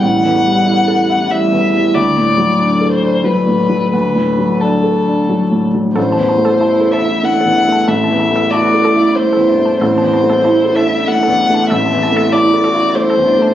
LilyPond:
<<
  \new Staff \with { instrumentName = "Synth pluck" } { \time 3/4 \key a \dorian \tempo 4 = 94 r2. | r2. | r2. | a'16 a''16 a''16 a'16 a''16 r16 a'16 r16 e''16 a'16 e''16 a''16 |
a'16 a''16 a''16 a'16 a''16 r16 a'16 r16 e''16 a'16 e''16 a''16 | a'16 a''16 a''16 a'16 a''16 r16 a'16 r16 e''16 a'16 e''16 a''16 | a'16 a''16 a''16 a'16 a''16 r16 a'16 r16 e''16 a'16 e''16 a''16 | }
  \new Staff \with { instrumentName = "Violin" } { \time 3/4 \key a \dorian fis''2 e''4 | d''4. c''8 b'4 | b'4 a'4. r8 | c''4. e''8 fis''4 |
e''4 d''4 c''4 | c''4. e''8 fis''4 | e''4 d''4 c''4 | }
  \new Staff \with { instrumentName = "Ambient pad" } { \time 3/4 \key a \dorian <g e' a'>2. | <fis d' a'>2.~ | <fis d' a'>2. | <a e' a'>2.~ |
<a e' a'>2. | <a e' a'>2.~ | <a e' a'>2. | }
  \new Staff \with { instrumentName = "Cello" } { \time 3/4 \key a \dorian r2. | r2. | r2. | r4 e'4 d'4 |
c'8 e'8 fis'8 e'8 e'8 d'8 | c'4 e'8 d'4. | c'4 e'8 fis'8 e'8 d'8 | }
  \new Staff \with { instrumentName = "Felt piano" } { \time 3/4 \key a \dorian \tuplet 3/2 { <a,, g>8 e,8 g8 e'8 a'8 e'8 g8 e,8 g8 } | \tuplet 3/2 { d,8 a,8 fis8 d'8 a'8 d'8 fis8 a,8 fis8 } | \tuplet 3/2 { d,8 a,8 fis8 d'8 a'8 d'8 fis8 a,8 fis8 } | \tuplet 3/2 { a,,8 e,8 a8 e'8 a'8 e'8 a8 e,8 a8 } |
\tuplet 3/2 { a,,8 e,8 a8 e'8 a'8 e'8 a8 e,8 a8 } | \tuplet 3/2 { a,,8 e,8 a8 e'8 a'8 e'8 a8 e,8 a8 } | \tuplet 3/2 { a,,8 e,8 a8 e'8 a'8 e'8 a8 e,8 a8 } | }
>>